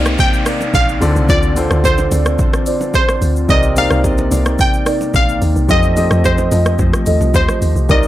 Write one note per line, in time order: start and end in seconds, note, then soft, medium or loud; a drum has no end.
0.00 0.17 C2 loud
0.00 1.03 C3 medium
0.00 0.99 A#3 medium
0.00 1.01 C4 medium
0.00 0.17 D#4 medium
0.00 0.99 D#4 medium
0.00 1.03 D#4 medium
0.00 0.17 A#4 medium
0.00 1.03 A#4 medium
0.00 0.17 D5 medium
0.00 0.99 D5 medium
0.00 1.02 D5 medium
0.00 0.22 F5 loud
0.00 0.25 F5 medium
0.00 downlifter medium
0.05 cross-stick loud
0.05 shaker medium
0.18 0.76 G5 loud
0.18 kick loud
0.18 low conga medium
0.18 shaker medium
0.33 shaker medium
0.46 0.59 D#4 medium
0.46 0.60 A#4 medium
0.46 0.60 D5 medium
0.46 cross-stick loud
0.46 open hi-hat medium
0.46 shaker loud
0.61 low bongo medium
0.61 shaker medium
0.74 1.00 A#1 loud
0.74 1.31 F5 loud
0.74 kick loud
0.74 high bongo medium
0.74 shaker medium
0.89 shaker medium
1.01 1.15 D2 loud
1.01 1.45 D3 medium
1.01 1.46 C4 medium
1.01 3.47 C4 medium
1.01 3.47 F4 medium
1.01 1.46 F4 medium
1.01 1.46 A4 medium
1.01 3.47 D5 medium
1.01 1.46 D5 medium
1.01 open hi-hat soft
1.01 shaker medium
1.16 1.28 C2 loud
1.16 shaker medium
1.28 1.69 D2 loud
1.28 2.05 F4 medium
1.28 2.05 C5 medium
1.28 2.05 D5 loud
1.28 1.86 D5 loud
1.28 kick loud
1.28 low conga medium
1.28 shaker medium
1.43 shaker medium
1.56 2.44 D3 medium
1.56 2.45 C4 medium
1.56 2.45 F4 medium
1.56 2.45 A4 medium
1.56 2.45 C5 medium
1.56 open hi-hat medium
1.56 low bongo medium
1.56 shaker loud
1.71 2.09 D2 loud
1.71 cross-stick loud
1.71 shaker soft
1.84 2.94 C5 medium
1.84 kick medium
1.84 high bongo medium
1.84 low conga medium
1.84 shaker medium
1.98 low bongo medium
1.98 shaker medium
2.11 2.38 D2 loud
2.11 2.37 F4 medium
2.11 2.37 C5 medium
2.11 2.37 D5 medium
2.11 open hi-hat medium
2.11 high bongo soft
2.11 low bongo medium
2.11 shaker loud
2.26 cross-stick loud
2.26 shaker medium
2.39 kick loud
2.39 low conga medium
2.39 shaker medium
2.53 cross-stick loud
2.53 shaker medium
2.66 2.80 F4 medium
2.66 2.80 C5 medium
2.66 2.80 D5 medium
2.66 open hi-hat medium
2.66 shaker loud
2.81 low bongo medium
2.81 shaker medium
2.94 3.51 C5 loud
2.94 kick loud
2.94 high bongo medium
2.94 shaker medium
3.09 cross-stick loud
3.09 shaker medium
3.22 3.48 D2 loud
3.22 open hi-hat soft
3.22 shaker medium
3.36 shaker medium
3.48 3.89 C2 loud
3.48 3.71 C3 medium
3.48 5.67 A#3 medium
3.48 3.71 C4 medium
3.48 4.25 D#4 medium
3.48 3.71 D#4 medium
3.48 5.67 D#4 medium
3.48 4.25 A#4 medium
3.48 3.72 A#4 medium
3.48 5.67 D5 medium
3.48 4.25 D5 loud
3.48 3.72 D5 medium
3.48 3.62 D#5 loud
3.48 kick loud
3.48 low conga medium
3.48 shaker medium
3.63 shaker medium
3.76 4.64 C3 medium
3.76 4.65 C4 medium
3.76 4.65 D#4 medium
3.76 4.65 A#4 medium
3.76 4.65 D5 medium
3.76 4.62 F5 loud
3.76 open hi-hat medium
3.76 low bongo medium
3.76 shaker loud
3.90 4.29 C2 loud
3.90 cross-stick loud
3.90 shaker medium
4.04 kick medium
4.04 high bongo medium
4.04 low conga medium
4.04 shaker medium
4.18 low bongo medium
4.18 shaker medium
4.31 4.58 C2 loud
4.31 4.57 D#4 medium
4.31 4.57 A#4 medium
4.31 4.57 D5 medium
4.31 open hi-hat medium
4.31 high bongo soft
4.31 low bongo medium
4.31 shaker loud
4.46 cross-stick loud
4.46 shaker medium
4.58 5.17 G5 loud
4.58 kick loud
4.58 low conga medium
4.58 shaker medium
4.74 shaker medium
4.86 5.00 D#4 medium
4.86 5.00 A#4 medium
4.86 5.00 D5 medium
4.86 cross-stick loud
4.86 open hi-hat medium
4.86 shaker loud
5.01 low bongo medium
5.01 shaker medium
5.14 5.40 A#1 medium
5.14 5.72 F5 loud
5.14 kick loud
5.14 high bongo medium
5.14 shaker medium
5.29 shaker medium
5.42 5.55 D#2 loud
5.42 open hi-hat soft
5.42 shaker medium
5.56 5.69 C2 loud
5.56 shaker medium
5.68 6.09 F2 loud
5.68 5.91 F3 medium
5.68 7.87 A3 medium
5.68 5.91 C4 medium
5.68 6.45 F4 medium
5.68 7.87 F4 medium
5.68 5.91 G4 medium
5.68 6.45 A4 medium
5.68 5.92 A4 medium
5.68 7.87 D#5 medium
5.68 6.46 D#5 loud
5.68 5.92 D#5 medium
5.68 6.27 D#5 loud
5.68 kick loud
5.68 low conga medium
5.68 shaker medium
5.83 shaker medium
5.96 6.85 F3 medium
5.96 6.85 C4 medium
5.96 6.85 G4 medium
5.96 6.85 A4 medium
5.96 6.85 D#5 medium
5.96 open hi-hat medium
5.96 low bongo medium
5.96 shaker medium
6.11 6.50 F2 loud
6.11 cross-stick loud
6.11 shaker soft
6.24 7.31 C5 medium
6.24 kick medium
6.24 high bongo medium
6.24 low conga medium
6.24 shaker medium
6.38 low bongo medium
6.38 shaker medium
6.51 6.78 F2 loud
6.51 6.77 F4 medium
6.51 6.77 A4 medium
6.51 6.77 D#5 medium
6.51 open hi-hat medium
6.51 high bongo medium
6.51 low bongo medium
6.51 shaker loud
6.66 cross-stick loud
6.66 shaker medium
6.79 6.93 F2 loud
6.79 kick loud
6.79 low conga medium
6.79 shaker medium
6.93 cross-stick loud
6.93 shaker medium
7.06 7.20 D#2 medium
7.06 7.20 F4 medium
7.06 7.20 A4 medium
7.06 7.20 D#5 medium
7.06 open hi-hat medium
7.06 shaker loud
7.21 7.34 C2 loud
7.21 low bongo medium
7.21 shaker medium
7.34 7.48 D#2 loud
7.34 7.92 C5 loud
7.34 kick loud
7.34 high bongo medium
7.34 shaker medium
7.49 cross-stick loud
7.49 shaker medium
7.62 7.75 D#2 medium
7.62 open hi-hat soft
7.62 shaker medium
7.76 7.89 C2 medium
7.76 shaker medium
7.89 8.08 C2 loud
7.89 8.08 C3 medium
7.89 8.08 A#3 medium
7.89 8.08 C4 medium
7.89 8.08 D#4 medium
7.89 8.08 A#4 medium
7.89 8.08 C5 medium
7.89 8.08 D5 loud
7.89 8.08 D5 medium
7.89 8.08 D#5 loud
7.89 kick loud
7.89 low conga medium
7.89 shaker medium
8.03 shaker medium